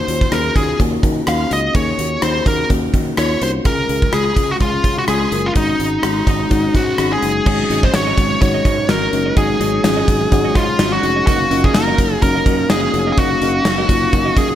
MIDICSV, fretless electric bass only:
0, 0, Header, 1, 2, 480
1, 0, Start_track
1, 0, Tempo, 476190
1, 1762, Time_signature, 4, 2, 24, 8
1, 14666, End_track
2, 0, Start_track
2, 0, Title_t, "Fretless electric bass"
2, 0, Program_c, 0, 35
2, 82, Note_on_c, 0, 39, 82
2, 255, Note_off_c, 0, 39, 0
2, 320, Note_on_c, 0, 39, 89
2, 493, Note_off_c, 0, 39, 0
2, 561, Note_on_c, 0, 39, 85
2, 734, Note_off_c, 0, 39, 0
2, 803, Note_on_c, 0, 39, 87
2, 976, Note_off_c, 0, 39, 0
2, 1041, Note_on_c, 0, 51, 81
2, 1214, Note_off_c, 0, 51, 0
2, 1282, Note_on_c, 0, 39, 79
2, 1455, Note_off_c, 0, 39, 0
2, 1522, Note_on_c, 0, 37, 73
2, 1695, Note_off_c, 0, 37, 0
2, 1761, Note_on_c, 0, 39, 91
2, 1935, Note_off_c, 0, 39, 0
2, 2001, Note_on_c, 0, 39, 86
2, 2174, Note_off_c, 0, 39, 0
2, 2242, Note_on_c, 0, 39, 84
2, 2415, Note_off_c, 0, 39, 0
2, 2480, Note_on_c, 0, 39, 83
2, 2654, Note_off_c, 0, 39, 0
2, 2723, Note_on_c, 0, 39, 89
2, 2895, Note_off_c, 0, 39, 0
2, 2960, Note_on_c, 0, 51, 83
2, 3133, Note_off_c, 0, 51, 0
2, 3202, Note_on_c, 0, 39, 81
2, 3375, Note_off_c, 0, 39, 0
2, 3442, Note_on_c, 0, 36, 74
2, 3615, Note_off_c, 0, 36, 0
2, 3682, Note_on_c, 0, 37, 93
2, 3855, Note_off_c, 0, 37, 0
2, 3922, Note_on_c, 0, 37, 96
2, 4095, Note_off_c, 0, 37, 0
2, 4161, Note_on_c, 0, 37, 94
2, 4335, Note_off_c, 0, 37, 0
2, 4400, Note_on_c, 0, 37, 85
2, 4574, Note_off_c, 0, 37, 0
2, 4643, Note_on_c, 0, 37, 96
2, 4815, Note_off_c, 0, 37, 0
2, 4879, Note_on_c, 0, 49, 75
2, 5053, Note_off_c, 0, 49, 0
2, 5122, Note_on_c, 0, 37, 90
2, 5295, Note_off_c, 0, 37, 0
2, 5362, Note_on_c, 0, 30, 83
2, 5535, Note_off_c, 0, 30, 0
2, 5602, Note_on_c, 0, 32, 101
2, 5775, Note_off_c, 0, 32, 0
2, 5841, Note_on_c, 0, 32, 88
2, 6014, Note_off_c, 0, 32, 0
2, 6080, Note_on_c, 0, 32, 81
2, 6254, Note_off_c, 0, 32, 0
2, 6320, Note_on_c, 0, 32, 88
2, 6494, Note_off_c, 0, 32, 0
2, 6562, Note_on_c, 0, 32, 86
2, 6735, Note_off_c, 0, 32, 0
2, 6799, Note_on_c, 0, 44, 82
2, 6973, Note_off_c, 0, 44, 0
2, 7041, Note_on_c, 0, 32, 81
2, 7214, Note_off_c, 0, 32, 0
2, 7282, Note_on_c, 0, 30, 72
2, 7455, Note_off_c, 0, 30, 0
2, 7522, Note_on_c, 0, 32, 100
2, 7695, Note_off_c, 0, 32, 0
2, 7762, Note_on_c, 0, 32, 91
2, 7935, Note_off_c, 0, 32, 0
2, 8001, Note_on_c, 0, 32, 85
2, 8174, Note_off_c, 0, 32, 0
2, 8241, Note_on_c, 0, 32, 88
2, 8414, Note_off_c, 0, 32, 0
2, 8484, Note_on_c, 0, 32, 84
2, 8656, Note_off_c, 0, 32, 0
2, 8720, Note_on_c, 0, 44, 84
2, 8963, Note_on_c, 0, 32, 94
2, 8978, Note_off_c, 0, 44, 0
2, 9135, Note_off_c, 0, 32, 0
2, 9202, Note_on_c, 0, 30, 83
2, 9375, Note_off_c, 0, 30, 0
2, 9443, Note_on_c, 0, 32, 104
2, 9615, Note_off_c, 0, 32, 0
2, 9681, Note_on_c, 0, 32, 90
2, 9854, Note_off_c, 0, 32, 0
2, 9922, Note_on_c, 0, 32, 92
2, 10095, Note_off_c, 0, 32, 0
2, 10160, Note_on_c, 0, 32, 99
2, 10333, Note_off_c, 0, 32, 0
2, 10403, Note_on_c, 0, 32, 92
2, 10575, Note_off_c, 0, 32, 0
2, 10639, Note_on_c, 0, 44, 88
2, 10813, Note_off_c, 0, 44, 0
2, 10882, Note_on_c, 0, 32, 101
2, 11055, Note_off_c, 0, 32, 0
2, 11121, Note_on_c, 0, 29, 87
2, 11294, Note_off_c, 0, 29, 0
2, 11362, Note_on_c, 0, 30, 102
2, 11535, Note_off_c, 0, 30, 0
2, 11601, Note_on_c, 0, 30, 91
2, 11774, Note_off_c, 0, 30, 0
2, 11842, Note_on_c, 0, 30, 97
2, 12015, Note_off_c, 0, 30, 0
2, 12079, Note_on_c, 0, 30, 96
2, 12253, Note_off_c, 0, 30, 0
2, 12322, Note_on_c, 0, 30, 102
2, 12495, Note_off_c, 0, 30, 0
2, 12559, Note_on_c, 0, 42, 88
2, 12733, Note_off_c, 0, 42, 0
2, 12800, Note_on_c, 0, 30, 87
2, 12974, Note_off_c, 0, 30, 0
2, 13041, Note_on_c, 0, 29, 84
2, 13214, Note_off_c, 0, 29, 0
2, 13282, Note_on_c, 0, 30, 96
2, 13455, Note_off_c, 0, 30, 0
2, 13522, Note_on_c, 0, 30, 93
2, 13695, Note_off_c, 0, 30, 0
2, 13760, Note_on_c, 0, 30, 90
2, 13933, Note_off_c, 0, 30, 0
2, 14001, Note_on_c, 0, 30, 92
2, 14174, Note_off_c, 0, 30, 0
2, 14244, Note_on_c, 0, 30, 96
2, 14416, Note_off_c, 0, 30, 0
2, 14482, Note_on_c, 0, 42, 88
2, 14655, Note_off_c, 0, 42, 0
2, 14666, End_track
0, 0, End_of_file